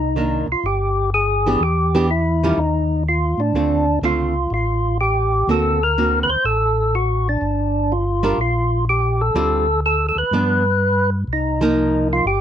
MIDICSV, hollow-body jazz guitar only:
0, 0, Header, 1, 2, 480
1, 0, Start_track
1, 0, Tempo, 483871
1, 1596, Time_signature, 4, 2, 24, 8
1, 12309, End_track
2, 0, Start_track
2, 0, Title_t, "Hollow-body jazz guitar"
2, 0, Program_c, 0, 26
2, 160, Note_on_c, 0, 51, 51
2, 170, Note_on_c, 0, 58, 54
2, 177, Note_on_c, 0, 62, 59
2, 453, Note_off_c, 0, 51, 0
2, 457, Note_off_c, 0, 58, 0
2, 461, Note_off_c, 0, 62, 0
2, 1452, Note_on_c, 0, 52, 55
2, 1461, Note_on_c, 0, 59, 57
2, 1462, Note_on_c, 0, 67, 62
2, 1464, Note_on_c, 0, 62, 69
2, 1585, Note_off_c, 0, 52, 0
2, 1589, Note_off_c, 0, 59, 0
2, 1590, Note_off_c, 0, 67, 0
2, 1591, Note_off_c, 0, 62, 0
2, 1931, Note_on_c, 0, 52, 66
2, 1933, Note_on_c, 0, 59, 72
2, 1939, Note_on_c, 0, 62, 79
2, 1941, Note_on_c, 0, 67, 84
2, 2065, Note_off_c, 0, 52, 0
2, 2066, Note_off_c, 0, 59, 0
2, 2069, Note_off_c, 0, 62, 0
2, 2070, Note_off_c, 0, 67, 0
2, 2416, Note_on_c, 0, 51, 74
2, 2423, Note_on_c, 0, 61, 69
2, 2424, Note_on_c, 0, 55, 79
2, 2434, Note_on_c, 0, 65, 74
2, 2547, Note_off_c, 0, 51, 0
2, 2551, Note_off_c, 0, 55, 0
2, 2551, Note_off_c, 0, 61, 0
2, 2556, Note_off_c, 0, 65, 0
2, 3524, Note_on_c, 0, 50, 45
2, 3529, Note_on_c, 0, 57, 46
2, 3531, Note_on_c, 0, 60, 47
2, 3533, Note_on_c, 0, 65, 53
2, 3815, Note_off_c, 0, 50, 0
2, 3817, Note_off_c, 0, 57, 0
2, 3818, Note_off_c, 0, 60, 0
2, 3819, Note_off_c, 0, 65, 0
2, 4001, Note_on_c, 0, 50, 60
2, 4004, Note_on_c, 0, 60, 57
2, 4006, Note_on_c, 0, 57, 52
2, 4009, Note_on_c, 0, 65, 62
2, 4293, Note_off_c, 0, 50, 0
2, 4294, Note_off_c, 0, 60, 0
2, 4296, Note_off_c, 0, 57, 0
2, 4297, Note_off_c, 0, 65, 0
2, 5446, Note_on_c, 0, 58, 56
2, 5448, Note_on_c, 0, 50, 48
2, 5456, Note_on_c, 0, 60, 58
2, 5461, Note_on_c, 0, 66, 60
2, 5736, Note_off_c, 0, 58, 0
2, 5737, Note_off_c, 0, 50, 0
2, 5741, Note_off_c, 0, 60, 0
2, 5743, Note_off_c, 0, 66, 0
2, 5931, Note_on_c, 0, 50, 47
2, 5934, Note_on_c, 0, 58, 52
2, 5940, Note_on_c, 0, 60, 48
2, 5943, Note_on_c, 0, 66, 51
2, 6219, Note_off_c, 0, 50, 0
2, 6220, Note_off_c, 0, 58, 0
2, 6223, Note_off_c, 0, 60, 0
2, 6224, Note_off_c, 0, 66, 0
2, 8165, Note_on_c, 0, 55, 73
2, 8171, Note_on_c, 0, 62, 72
2, 8173, Note_on_c, 0, 65, 69
2, 8180, Note_on_c, 0, 70, 78
2, 8302, Note_off_c, 0, 55, 0
2, 8305, Note_off_c, 0, 62, 0
2, 8306, Note_off_c, 0, 65, 0
2, 8309, Note_off_c, 0, 70, 0
2, 9281, Note_on_c, 0, 55, 72
2, 9282, Note_on_c, 0, 50, 70
2, 9288, Note_on_c, 0, 65, 77
2, 9290, Note_on_c, 0, 60, 66
2, 9573, Note_off_c, 0, 55, 0
2, 9574, Note_off_c, 0, 50, 0
2, 9577, Note_off_c, 0, 65, 0
2, 9578, Note_off_c, 0, 60, 0
2, 10249, Note_on_c, 0, 53, 67
2, 10255, Note_on_c, 0, 59, 75
2, 10255, Note_on_c, 0, 62, 74
2, 10537, Note_off_c, 0, 53, 0
2, 10540, Note_off_c, 0, 59, 0
2, 10540, Note_off_c, 0, 62, 0
2, 11518, Note_on_c, 0, 53, 82
2, 11530, Note_on_c, 0, 58, 82
2, 11532, Note_on_c, 0, 63, 81
2, 12123, Note_off_c, 0, 53, 0
2, 12129, Note_off_c, 0, 58, 0
2, 12130, Note_off_c, 0, 63, 0
2, 12309, End_track
0, 0, End_of_file